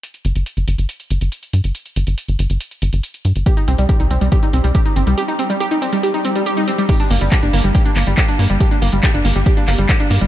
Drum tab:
CC |----------------|----------------|----------------|----------------|
HH |xxxxxxxxxxxxxxxx|xxxxxxxxxxxxxxxx|xxxxxxxxxxxxxxxx|xxxxxxxxxxxxxxxx|
CP |----------------|----------------|----------------|----------------|
BD |----------------|----------------|o---o---o---o---|----------------|

CC |x---------------|----------------|
HH |xxoxxxoxxxoxxxox|xxoxxxoxxxoxxxox|
CP |----x-----x-x---|----x-----x-x---|
BD |o---o---o---o---|o---o---o---o---|